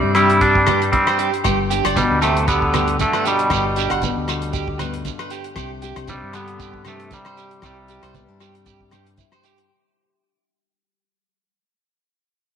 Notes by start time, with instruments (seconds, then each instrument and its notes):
Already playing: nylon-string guitar C3 G3 D4 G4, clean electric guitar G3 C4
0.03 fingered electric bass G2
0.15 nylon-string guitar G3 D4, clean electric guitar G3 E4 G4, cross-stick, closed hi-hat, low agogo
0.30 closed hi-hat
0.41 clean electric guitar G3 D4 G4, kick, closed hi-hat, muted conga
0.55 kick
0.67 nylon-string guitar G2 D4, clean electric guitar G4, cross-stick, closed hi-hat, muted conga, high conga, low conga, low agogo
0.82 closed hi-hat
0.92 clean electric guitar G3 C4, muted nylon-string guitar stroke, kick, closed hi-hat, high conga
1.07 nylon-string guitar G4, clean electric guitar C5, cross-stick, low agogo
1.19 clean electric guitar G4, closed hi-hat
1.34 closed hi-hat
1.44 fingered electric bass G1, nylon-string guitar G2, clean electric guitar G4, kick, cross-stick, closed hi-hat, muted conga, low agogo, shekere
1.70 nylon-string guitar D4, clean electric guitar G4, closed hi-hat, shekere
1.85 fingered electric bass G1, clean electric guitar D5, cross-stick, closed hi-hat, low agogo
1.96 clean electric guitar B2 G3, nylon-string guitar B3, kick, closed hi-hat, muted conga, high conga, shekere
2.11 fingered electric bass D2
2.22 clean electric guitar C3 A3 G4, nylon-string guitar D3 F#4, cross-stick, closed hi-hat, low agogo, shekere
2.37 closed hi-hat
2.48 clean electric guitar D3 B3 G4, kick, closed hi-hat, muted conga, shekere
2.62 kick
2.73 nylon-string guitar G2 B3, clean electric guitar G4, cross-stick, closed hi-hat, muted conga, high conga, low agogo, shekere
2.88 closed hi-hat
2.99 clean electric guitar D3 A3, nylon-string guitar D4, kick, closed hi-hat, high conga, shekere
3.13 clean electric guitar B4, cross-stick, low agogo
3.25 clean electric guitar B2 G3 G4, closed hi-hat, shekere
3.39 closed hi-hat
3.50 fingered electric bass G1, nylon-string guitar G2, clean electric guitar G4, kick, cross-stick, closed hi-hat, muted conga, low agogo, shekere
3.76 nylon-string guitar D4, clean electric guitar G4, closed hi-hat, shekere
3.90 fingered electric bass G1, clean electric guitar F#5, cross-stick, closed hi-hat, low agogo
4.02 nylon-string guitar B3, kick, closed hi-hat, muted conga, high conga, shekere
4.17 fingered electric bass D2
4.28 nylon-string guitar D3 F#4, cross-stick, closed hi-hat, low agogo, shekere
4.42 closed hi-hat
4.53 clean electric guitar G4, kick, closed hi-hat, muted conga, shekere
4.68 kick
4.79 nylon-string guitar G2 B3, clean electric guitar B4, cross-stick, closed hi-hat, muted conga, high conga, low conga, low agogo, shekere
4.94 closed hi-hat
5.05 nylon-string guitar D4, kick, closed hi-hat, high conga, shekere
5.19 clean electric guitar B4, cross-stick, low agogo
5.30 clean electric guitar G4, closed hi-hat, shekere
5.44 closed hi-hat
5.56 fingered electric bass C2, nylon-string guitar C3, clean electric guitar G4, kick, cross-stick, closed hi-hat, muted conga, low agogo, shekere
5.82 clean electric guitar G4, nylon-string guitar G4, closed hi-hat, shekere
5.96 fingered electric bass C2, muted clean electric guitar stroke, cross-stick, closed hi-hat, low agogo
6.08 clean electric guitar C3 G3, nylon-string guitar D4, kick, closed hi-hat, muted conga, high conga, shekere
6.23 fingered electric bass G2
6.33 clean electric guitar D3 B3 G4, nylon-string guitar G3 G4, cross-stick, closed hi-hat, low agogo, shekere
6.48 closed hi-hat
6.60 clean electric guitar G4, kick, closed hi-hat, shekere
6.74 kick
6.85 nylon-string guitar G2 D4, clean electric guitar C3 A3 G4, cross-stick, closed hi-hat, muted conga, high conga, low agogo, shekere
7.00 closed hi-hat
7.11 clean electric guitar C3 G3, nylon-string guitar G4, kick, closed hi-hat, high conga, shekere
7.25 clean electric guitar C5, cross-stick, low agogo
7.37 clean electric guitar G4, closed hi-hat, shekere
7.51 closed hi-hat
7.62 fingered electric bass C2, nylon-string guitar C3, clean electric guitar C3 G3 G4, kick, cross-stick, closed hi-hat, muted conga, low agogo, shekere
7.88 clean electric guitar G4, nylon-string guitar G4, closed hi-hat, shekere
8.03 fingered electric bass C2, clean electric guitar C5, cross-stick, closed hi-hat, low agogo
8.15 nylon-string guitar B3, kick, closed hi-hat, muted conga, high conga, low conga, shekere
8.28 fingered electric bass G2, nylon-string guitar D4
8.40 nylon-string guitar G3 G4, clean electric guitar G4, cross-stick, closed hi-hat, low agogo, shekere
8.55 closed hi-hat
8.66 clean electric guitar G4, kick, closed hi-hat, muted conga, shekere
8.81 kick
8.91 nylon-string guitar G2 D4, clean electric guitar G4, cross-stick, closed hi-hat, muted conga, high conga, low agogo, shekere
9.07 closed hi-hat
9.18 nylon-string guitar E4, kick, closed hi-hat, high conga, shekere
9.32 nylon-string guitar G4, clean electric guitar C5, cross-stick, low agogo
9.43 clean electric guitar G4, closed hi-hat, shekere
9.58 closed hi-hat